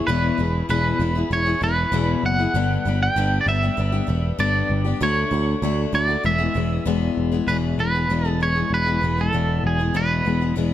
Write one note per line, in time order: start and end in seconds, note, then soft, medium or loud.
0.07 0.30 E1 loud
0.07 0.39 E2 medium
0.07 0.39 B2 medium
0.07 0.36 E3 medium
0.07 0.38 B3 medium
0.07 0.38 E4 medium
0.07 0.39 G#4 medium
0.07 0.65 B4 medium
0.38 0.61 E1 medium
0.38 0.68 E3 medium
0.38 0.69 B3 medium
0.38 0.69 E4 medium
0.38 0.69 G#4 medium
0.69 0.91 E1 medium
0.69 1.00 E2 medium
0.69 1.01 B2 medium
0.69 0.99 E3 medium
0.69 1.00 B3 medium
0.69 1.00 E4 medium
0.69 1.01 G#4 medium
0.69 1.33 B4 medium
0.99 1.22 E1 medium
0.99 1.16 E3 medium
0.99 1.16 B3 medium
0.99 1.16 E4 medium
0.99 1.14 G#4 medium
1.15 1.30 E3 soft
1.15 1.31 B3 soft
1.15 1.32 E4 soft
1.15 1.31 G#4 medium
1.31 1.53 E1 medium
1.31 1.47 E3 medium
1.31 1.47 B3 medium
1.31 1.45 E4 medium
1.31 1.45 G#4 medium
1.31 1.63 C#5 loud
1.46 1.60 E3 soft
1.46 1.61 B3 soft
1.46 1.62 E4 medium
1.46 1.62 G#4 medium
1.61 1.84 E1 medium
1.61 1.91 E3 medium
1.61 1.92 B3 medium
1.61 1.92 E4 medium
1.61 1.93 G#4 medium
1.61 2.25 B4 medium
1.92 2.14 E1 medium
1.92 2.39 E2 medium
1.92 2.39 B2 medium
1.92 2.39 E3 medium
1.92 2.39 B3 medium
1.92 2.38 E4 medium
1.92 2.38 G#4 medium
2.24 2.46 F#1 medium
2.24 3.02 F#5 medium
2.39 2.55 E3 medium
2.39 2.55 B3 soft
2.39 2.55 E4 soft
2.39 2.54 G#4 medium
2.54 2.76 G1 medium
2.54 2.85 G2 medium
2.54 2.86 D3 medium
2.54 2.84 G3 medium
2.54 2.85 B3 medium
2.54 2.86 D4 medium
2.54 2.86 G4 medium
2.85 3.08 G1 medium
2.85 3.16 G3 medium
2.85 3.16 B3 medium
2.85 3.16 D4 medium
2.85 3.17 G4 medium
3.03 3.40 G5 medium
3.16 3.38 G1 loud
3.16 3.47 G2 medium
3.16 3.47 D3 medium
3.16 3.46 G3 medium
3.16 3.47 B3 medium
3.16 3.48 D4 loud
3.16 3.48 G4 medium
3.41 3.48 D5 medium
3.46 3.69 G1 medium
3.46 3.63 G3 medium
3.46 3.63 B3 medium
3.46 3.62 D4 medium
3.46 4.40 E5 medium
3.63 3.76 G3 soft
3.63 3.77 B3 soft
3.63 3.78 D4 soft
3.63 3.78 G4 medium
3.77 4.00 G1 medium
3.77 3.93 G3 medium
3.77 3.93 B3 medium
3.77 3.91 D4 medium
3.77 3.91 G4 medium
3.92 4.06 G3 soft
3.92 4.06 B3 medium
3.92 4.08 D4 soft
3.92 4.08 G4 medium
4.07 4.30 E1 medium
4.07 4.38 G3 medium
4.07 4.38 B3 medium
4.07 4.38 D4 medium
4.07 4.39 G4 medium
4.38 4.61 G1 medium
4.38 4.85 G2 medium
4.38 4.86 D3 medium
4.38 4.86 G3 medium
4.38 4.85 B3 medium
4.38 4.85 D4 medium
4.38 4.83 G4 medium
4.38 5.03 D5 medium
4.70 4.92 G1 medium
4.85 5.00 G3 soft
4.85 5.01 B3 medium
4.85 5.00 D4 medium
4.85 5.01 G4 medium
5.01 5.23 D2 medium
5.01 5.30 D3 medium
5.01 5.31 A3 medium
5.01 5.32 D4 medium
5.01 5.32 F#4 medium
5.01 5.94 C#5 medium
5.31 5.54 D2 medium
5.31 5.61 D3 medium
5.31 5.62 A3 medium
5.31 5.62 D4 medium
5.31 5.63 F#4 medium
5.62 5.84 D2 medium
5.62 5.91 D3 medium
5.62 5.92 A3 medium
5.62 5.93 D4 medium
5.62 5.94 F#4 medium
5.92 6.15 D2 medium
5.92 6.09 D3 medium
5.92 6.09 A3 medium
5.92 6.08 D4 medium
5.92 6.07 F#4 medium
5.92 6.25 D5 medium
6.08 6.24 A3 soft
6.08 6.25 D4 soft
6.08 6.24 F#4 medium
6.23 6.47 E1 medium
6.23 6.40 E3 medium
6.23 6.40 G#3 medium
6.23 6.38 B3 medium
6.23 6.37 G#4 medium
6.23 6.83 E5 medium
6.38 6.53 E3 soft
6.38 6.54 G#3 medium
6.38 6.55 B3 medium
6.38 6.55 G#4 medium
6.54 6.78 E1 medium
6.54 6.85 E3 medium
6.54 6.86 G#3 medium
6.54 6.86 B3 medium
6.54 6.86 G#4 medium
6.85 7.08 E1 medium
6.85 7.32 E2 medium
6.85 7.33 B2 medium
6.85 7.33 E3 medium
6.85 7.33 G#3 medium
6.85 7.31 B3 medium
6.85 7.30 G#4 medium
7.17 7.39 E1 medium
7.32 7.47 E3 medium
7.32 7.48 G#3 medium
7.32 7.48 B3 medium
7.32 7.48 G#4 medium
7.47 7.74 E1 medium
7.47 7.79 E2 medium
7.47 7.79 B2 medium
7.47 7.78 E3 medium
7.47 7.78 G#3 medium
7.47 7.80 B3 medium
7.47 7.80 G#4 medium
7.47 7.56 B4 medium
7.78 8.05 E1 medium
7.78 7.94 E3 medium
7.78 7.95 G#3 medium
7.78 7.94 B3 medium
7.78 7.93 G#4 medium
7.78 8.28 B4 medium
7.94 8.09 E3 soft
7.94 8.10 G#3 soft
7.94 8.10 B3 medium
7.94 8.10 G#4 soft
8.09 8.62 E1 medium
8.09 8.25 E2 medium
8.09 8.26 B2 medium
8.09 8.26 E3 medium
8.09 8.26 G#3 medium
8.09 8.25 B3 medium
8.09 8.24 G#4 medium
8.25 8.39 E3 soft
8.25 8.40 G#3 soft
8.25 8.41 B3 soft
8.25 8.41 G#4 medium
8.25 8.42 A4 medium
8.40 8.56 E3 medium
8.40 8.56 G#3 medium
8.40 8.55 B3 medium
8.40 8.54 G#4 medium
8.40 8.74 C#5 loud
8.55 8.87 E3 soft
8.55 8.87 G#3 soft
8.55 8.86 B3 soft
8.55 8.85 G#4 soft
8.70 8.97 E1 medium
8.70 9.21 B4 loud
8.86 9.00 E3 soft
8.86 9.01 G#3 soft
8.86 9.02 B3 soft
8.86 9.02 G#4 soft
9.01 9.29 E1 medium
9.01 9.17 E3 soft
9.01 9.18 G#3 medium
9.01 9.17 B3 medium
9.01 9.16 G#4 medium
9.17 9.33 E3 soft
9.17 9.34 G#3 soft
9.17 9.33 B3 soft
9.17 9.33 G#4 soft
9.17 9.63 A4 medium
9.33 9.59 E1 medium
9.33 9.79 E2 medium
9.33 9.80 B2 medium
9.33 9.80 E3 medium
9.33 9.79 B3 medium
9.64 9.90 E1 medium
9.64 9.97 G#4 medium
9.79 9.93 E3 soft
9.79 9.94 G#3 soft
9.79 9.95 B3 soft
9.79 9.95 G#4 soft
9.94 10.21 E1 medium
9.94 10.26 E2 medium
9.94 10.26 B2 medium
9.94 10.24 E3 medium
9.94 10.25 G#3 medium
9.94 10.25 B3 medium
9.94 10.26 G#4 medium
9.94 10.54 B4 medium
10.25 10.52 E1 medium
10.25 10.41 E3 medium
10.25 10.41 G#3 medium
10.25 10.40 B3 medium
10.25 10.39 G#4 medium
10.40 10.56 E3 soft
10.40 10.56 G#3 soft
10.40 10.56 B3 soft
10.40 10.56 G#4 soft
10.56 10.74 E1 medium
10.56 10.72 E2 medium
10.56 10.72 B2 medium
10.56 10.72 E3 medium
10.56 10.72 G#3 medium
10.56 10.71 B3 medium
10.56 10.71 G#4 medium